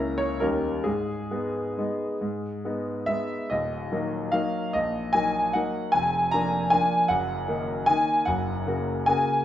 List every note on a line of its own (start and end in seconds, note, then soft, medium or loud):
0.00 0.45 C#2 soft
0.00 0.38 A#3 soft
0.00 0.38 C#4 soft
0.00 0.38 E4 soft
0.00 0.20 A#5 medium
0.18 0.41 C#5 medium
0.40 0.85 D#2 soft
0.40 0.82 G3 soft
0.40 0.82 C#4 soft
0.40 0.83 D#4 soft
0.40 0.85 A#4 medium
0.84 1.30 G#2 soft
0.84 3.07 G#4 medium
1.31 1.74 G#3 soft
1.31 1.74 B3 soft
1.31 1.74 D#4 soft
1.78 2.17 G#3 soft
1.78 2.17 B3 soft
1.78 2.17 D#4 soft
2.21 2.63 G#2 soft
2.65 3.05 G#3 soft
2.65 3.05 B3 soft
2.65 3.05 D#4 soft
3.06 3.47 G#3 soft
3.06 3.48 B3 soft
3.06 3.48 D#4 soft
3.06 3.50 E5 medium
3.50 3.91 D#1 soft
3.50 3.91 D#2 soft
3.50 4.32 D#5 medium
3.92 4.29 F#3 soft
3.92 4.29 A#3 soft
3.92 4.30 D#4 soft
4.32 4.70 F#3 soft
4.32 4.70 A#3 soft
4.32 4.70 D#4 soft
4.32 4.73 F5 medium
4.73 5.13 A#1 soft
4.73 5.13 A#2 soft
4.73 5.13 D#5 medium
5.13 5.51 F#3 soft
5.13 5.51 A#3 soft
5.13 5.51 D#4 soft
5.13 5.54 G#5 medium
5.53 5.90 F#3 soft
5.53 5.90 A#3 soft
5.53 5.90 D#4 soft
5.53 5.93 F#5 medium
5.92 6.31 F1 soft
5.92 6.31 F2 soft
5.92 6.31 G#5 medium
6.31 6.68 F3 soft
6.31 6.69 A#3 soft
6.31 6.68 D4 soft
6.31 6.71 A#5 medium
6.70 7.07 F3 soft
6.70 7.07 A#3 soft
6.70 7.07 D4 soft
6.70 7.09 G#5 medium
7.08 7.46 F#1 soft
7.08 7.47 F#2 soft
7.08 7.66 F#5 medium
7.48 7.84 D#3 soft
7.48 7.84 A#3 soft
7.48 7.84 D#4 soft
7.86 8.24 D#3 soft
7.86 8.25 A#3 soft
7.86 8.25 D#4 soft
7.86 8.27 G#5 medium
8.25 8.66 F#1 soft
8.25 8.66 F#2 soft
8.25 9.07 F#5 medium
8.67 9.04 C#3 soft
8.67 9.04 A#3 soft
8.67 9.04 F#4 soft
9.06 9.44 C#3 soft
9.06 9.44 A#3 soft
9.06 9.44 F#4 soft
9.06 9.45 G#5 medium